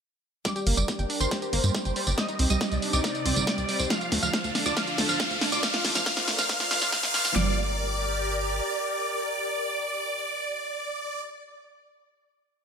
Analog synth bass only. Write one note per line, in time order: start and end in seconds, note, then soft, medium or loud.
0.67 0.73 G1 loud
0.77 0.84 G1 medium
0.99 1.06 G1 medium
1.21 1.27 G1 medium
1.53 1.60 G1 medium
1.64 1.70 G2 medium
1.85 1.92 G1 medium
2.07 2.14 G1 medium
2.39 2.46 C2 loud
2.50 2.57 C2 medium
2.72 2.78 C2 medium
2.93 3.00 C2 medium
3.26 3.32 C2 medium
3.36 3.43 G1 medium
3.58 3.65 C2 medium
3.80 3.86 C2 medium
4.12 4.19 D2 medium
4.23 4.29 D2 medium
4.44 4.51 D2 medium
4.66 4.73 D2 medium
4.98 5.05 D2 loud
5.09 5.16 D1 medium
5.30 5.37 D2 medium
5.52 5.59 D2 medium
5.84 5.91 A#1 loud
5.95 6.02 A#1 medium
6.17 6.24 A#1 medium
6.38 6.45 A#1 medium
6.71 6.78 A#1 medium
6.82 6.88 A#2 medium
7.03 7.10 A#1 medium
7.25 7.32 A#1 medium
7.36 8.61 G1 medium